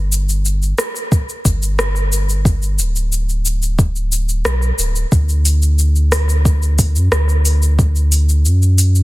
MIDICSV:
0, 0, Header, 1, 3, 480
1, 0, Start_track
1, 0, Tempo, 666667
1, 1766, Time_signature, 4, 2, 24, 8
1, 6502, End_track
2, 0, Start_track
2, 0, Title_t, "Sub bass"
2, 0, Program_c, 0, 38
2, 0, Note_on_c, 0, 31, 91
2, 527, Note_off_c, 0, 31, 0
2, 1045, Note_on_c, 0, 31, 96
2, 2004, Note_on_c, 0, 26, 91
2, 2015, Note_off_c, 0, 31, 0
2, 3201, Note_off_c, 0, 26, 0
2, 3205, Note_on_c, 0, 35, 87
2, 3397, Note_off_c, 0, 35, 0
2, 3444, Note_on_c, 0, 26, 94
2, 3637, Note_off_c, 0, 26, 0
2, 3687, Note_on_c, 0, 38, 97
2, 5005, Note_on_c, 0, 42, 105
2, 5016, Note_off_c, 0, 38, 0
2, 5101, Note_off_c, 0, 42, 0
2, 5125, Note_on_c, 0, 38, 95
2, 6083, Note_on_c, 0, 42, 81
2, 6094, Note_off_c, 0, 38, 0
2, 6502, Note_off_c, 0, 42, 0
2, 6502, End_track
3, 0, Start_track
3, 0, Title_t, "Drums"
3, 89, Note_on_c, 9, 82, 74
3, 161, Note_off_c, 9, 82, 0
3, 209, Note_on_c, 9, 82, 35
3, 281, Note_off_c, 9, 82, 0
3, 327, Note_on_c, 9, 82, 43
3, 399, Note_off_c, 9, 82, 0
3, 450, Note_on_c, 9, 82, 21
3, 522, Note_off_c, 9, 82, 0
3, 565, Note_on_c, 9, 37, 75
3, 567, Note_on_c, 9, 82, 81
3, 637, Note_off_c, 9, 37, 0
3, 639, Note_off_c, 9, 82, 0
3, 689, Note_on_c, 9, 82, 30
3, 761, Note_off_c, 9, 82, 0
3, 805, Note_on_c, 9, 36, 118
3, 808, Note_on_c, 9, 82, 44
3, 877, Note_off_c, 9, 36, 0
3, 880, Note_off_c, 9, 82, 0
3, 930, Note_on_c, 9, 82, 20
3, 1002, Note_off_c, 9, 82, 0
3, 1045, Note_on_c, 9, 36, 92
3, 1048, Note_on_c, 9, 82, 76
3, 1117, Note_off_c, 9, 36, 0
3, 1120, Note_off_c, 9, 82, 0
3, 1170, Note_on_c, 9, 82, 36
3, 1242, Note_off_c, 9, 82, 0
3, 1288, Note_on_c, 9, 37, 76
3, 1290, Note_on_c, 9, 82, 42
3, 1360, Note_off_c, 9, 37, 0
3, 1362, Note_off_c, 9, 82, 0
3, 1410, Note_on_c, 9, 82, 21
3, 1482, Note_off_c, 9, 82, 0
3, 1530, Note_on_c, 9, 82, 72
3, 1602, Note_off_c, 9, 82, 0
3, 1651, Note_on_c, 9, 82, 36
3, 1723, Note_off_c, 9, 82, 0
3, 1766, Note_on_c, 9, 36, 116
3, 1770, Note_on_c, 9, 82, 41
3, 1838, Note_off_c, 9, 36, 0
3, 1842, Note_off_c, 9, 82, 0
3, 1889, Note_on_c, 9, 82, 21
3, 1961, Note_off_c, 9, 82, 0
3, 2009, Note_on_c, 9, 82, 69
3, 2081, Note_off_c, 9, 82, 0
3, 2130, Note_on_c, 9, 82, 32
3, 2202, Note_off_c, 9, 82, 0
3, 2250, Note_on_c, 9, 82, 43
3, 2322, Note_off_c, 9, 82, 0
3, 2371, Note_on_c, 9, 82, 20
3, 2443, Note_off_c, 9, 82, 0
3, 2488, Note_on_c, 9, 82, 72
3, 2560, Note_off_c, 9, 82, 0
3, 2609, Note_on_c, 9, 82, 31
3, 2681, Note_off_c, 9, 82, 0
3, 2726, Note_on_c, 9, 36, 118
3, 2729, Note_on_c, 9, 82, 44
3, 2798, Note_off_c, 9, 36, 0
3, 2801, Note_off_c, 9, 82, 0
3, 2849, Note_on_c, 9, 82, 21
3, 2921, Note_off_c, 9, 82, 0
3, 2968, Note_on_c, 9, 82, 77
3, 3040, Note_off_c, 9, 82, 0
3, 3088, Note_on_c, 9, 82, 34
3, 3160, Note_off_c, 9, 82, 0
3, 3205, Note_on_c, 9, 37, 67
3, 3207, Note_on_c, 9, 82, 43
3, 3277, Note_off_c, 9, 37, 0
3, 3279, Note_off_c, 9, 82, 0
3, 3328, Note_on_c, 9, 82, 21
3, 3400, Note_off_c, 9, 82, 0
3, 3448, Note_on_c, 9, 82, 75
3, 3520, Note_off_c, 9, 82, 0
3, 3568, Note_on_c, 9, 82, 35
3, 3640, Note_off_c, 9, 82, 0
3, 3686, Note_on_c, 9, 36, 103
3, 3687, Note_on_c, 9, 82, 38
3, 3758, Note_off_c, 9, 36, 0
3, 3759, Note_off_c, 9, 82, 0
3, 3809, Note_on_c, 9, 82, 21
3, 3881, Note_off_c, 9, 82, 0
3, 3926, Note_on_c, 9, 46, 77
3, 3929, Note_on_c, 9, 82, 68
3, 3998, Note_off_c, 9, 46, 0
3, 4001, Note_off_c, 9, 82, 0
3, 4049, Note_on_c, 9, 82, 33
3, 4121, Note_off_c, 9, 82, 0
3, 4168, Note_on_c, 9, 82, 42
3, 4240, Note_off_c, 9, 82, 0
3, 4289, Note_on_c, 9, 82, 20
3, 4361, Note_off_c, 9, 82, 0
3, 4407, Note_on_c, 9, 37, 68
3, 4407, Note_on_c, 9, 46, 78
3, 4409, Note_on_c, 9, 82, 78
3, 4479, Note_off_c, 9, 37, 0
3, 4479, Note_off_c, 9, 46, 0
3, 4481, Note_off_c, 9, 82, 0
3, 4530, Note_on_c, 9, 82, 32
3, 4602, Note_off_c, 9, 82, 0
3, 4646, Note_on_c, 9, 36, 112
3, 4650, Note_on_c, 9, 82, 43
3, 4718, Note_off_c, 9, 36, 0
3, 4722, Note_off_c, 9, 82, 0
3, 4770, Note_on_c, 9, 82, 20
3, 4842, Note_off_c, 9, 82, 0
3, 4885, Note_on_c, 9, 46, 78
3, 4887, Note_on_c, 9, 36, 92
3, 4888, Note_on_c, 9, 82, 70
3, 4957, Note_off_c, 9, 46, 0
3, 4959, Note_off_c, 9, 36, 0
3, 4960, Note_off_c, 9, 82, 0
3, 5009, Note_on_c, 9, 82, 33
3, 5081, Note_off_c, 9, 82, 0
3, 5125, Note_on_c, 9, 37, 72
3, 5128, Note_on_c, 9, 82, 41
3, 5197, Note_off_c, 9, 37, 0
3, 5200, Note_off_c, 9, 82, 0
3, 5249, Note_on_c, 9, 82, 20
3, 5321, Note_off_c, 9, 82, 0
3, 5366, Note_on_c, 9, 46, 77
3, 5368, Note_on_c, 9, 82, 71
3, 5438, Note_off_c, 9, 46, 0
3, 5440, Note_off_c, 9, 82, 0
3, 5489, Note_on_c, 9, 82, 33
3, 5561, Note_off_c, 9, 82, 0
3, 5607, Note_on_c, 9, 36, 101
3, 5609, Note_on_c, 9, 82, 40
3, 5679, Note_off_c, 9, 36, 0
3, 5681, Note_off_c, 9, 82, 0
3, 5729, Note_on_c, 9, 82, 20
3, 5801, Note_off_c, 9, 82, 0
3, 5846, Note_on_c, 9, 46, 84
3, 5848, Note_on_c, 9, 82, 69
3, 5918, Note_off_c, 9, 46, 0
3, 5920, Note_off_c, 9, 82, 0
3, 5970, Note_on_c, 9, 82, 31
3, 6042, Note_off_c, 9, 82, 0
3, 6087, Note_on_c, 9, 82, 40
3, 6159, Note_off_c, 9, 82, 0
3, 6209, Note_on_c, 9, 82, 20
3, 6281, Note_off_c, 9, 82, 0
3, 6324, Note_on_c, 9, 46, 79
3, 6326, Note_on_c, 9, 82, 72
3, 6396, Note_off_c, 9, 46, 0
3, 6398, Note_off_c, 9, 82, 0
3, 6447, Note_on_c, 9, 82, 31
3, 6502, Note_off_c, 9, 82, 0
3, 6502, End_track
0, 0, End_of_file